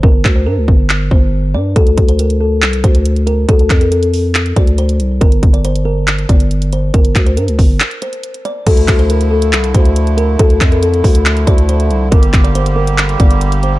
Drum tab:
CC |----------------|----------------|----------------|----------------|
HH |----------------|xxxxxx--xxxxxxx-|xxxxxxo-xxxxxxx-|xxxxxx--xxxxxxx-|
CP |--x-----x-------|--------x-------|--x-----x-------|--------x-------|
BD |o-o---o---o-----|o-o-------o-----|o-o-------o-----|o-o-------o-----|

CC |----------------|x---------------|----------------|----------------|
HH |xxxxxxo-xxxxxxx-|xxxxxx-xxxxxxxx-|xxxxxxoxxxxxxxx-|xxxxxx-xxxxxxxx-|
CP |--x-----x-------|--x-----x-------|--x-----x-------|--x-----x-------|
BD |o-o---o---------|o-o-------o-----|o-o---o---o-----|o-o-------o-----|